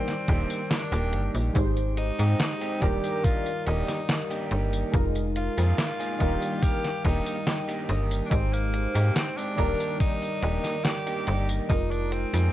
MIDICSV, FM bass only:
0, 0, Header, 1, 2, 480
1, 0, Start_track
1, 0, Key_signature, -3, "major"
1, 0, Tempo, 845070
1, 883, Time_signature, 4, 2, 24, 8
1, 7115, End_track
2, 0, Start_track
2, 0, Title_t, "FM bass"
2, 0, Program_c, 0, 39
2, 162, Note_on_c, 0, 27, 100
2, 256, Note_off_c, 0, 27, 0
2, 524, Note_on_c, 0, 27, 98
2, 642, Note_on_c, 0, 31, 104
2, 651, Note_off_c, 0, 27, 0
2, 736, Note_off_c, 0, 31, 0
2, 765, Note_on_c, 0, 34, 82
2, 855, Note_off_c, 0, 34, 0
2, 884, Note_on_c, 0, 32, 99
2, 1199, Note_off_c, 0, 32, 0
2, 1246, Note_on_c, 0, 44, 89
2, 1335, Note_off_c, 0, 44, 0
2, 1602, Note_on_c, 0, 27, 84
2, 1696, Note_off_c, 0, 27, 0
2, 2085, Note_on_c, 0, 27, 99
2, 2178, Note_off_c, 0, 27, 0
2, 2562, Note_on_c, 0, 31, 88
2, 2746, Note_off_c, 0, 31, 0
2, 2802, Note_on_c, 0, 29, 97
2, 3118, Note_off_c, 0, 29, 0
2, 3167, Note_on_c, 0, 41, 85
2, 3255, Note_off_c, 0, 41, 0
2, 3523, Note_on_c, 0, 27, 82
2, 3617, Note_off_c, 0, 27, 0
2, 4004, Note_on_c, 0, 27, 96
2, 4097, Note_off_c, 0, 27, 0
2, 4483, Note_on_c, 0, 31, 90
2, 4667, Note_off_c, 0, 31, 0
2, 4723, Note_on_c, 0, 32, 100
2, 5039, Note_off_c, 0, 32, 0
2, 5086, Note_on_c, 0, 44, 87
2, 5175, Note_off_c, 0, 44, 0
2, 5443, Note_on_c, 0, 27, 85
2, 5537, Note_off_c, 0, 27, 0
2, 5923, Note_on_c, 0, 27, 98
2, 6017, Note_off_c, 0, 27, 0
2, 6404, Note_on_c, 0, 31, 93
2, 6587, Note_off_c, 0, 31, 0
2, 6642, Note_on_c, 0, 29, 96
2, 6958, Note_off_c, 0, 29, 0
2, 7004, Note_on_c, 0, 41, 87
2, 7094, Note_off_c, 0, 41, 0
2, 7115, End_track
0, 0, End_of_file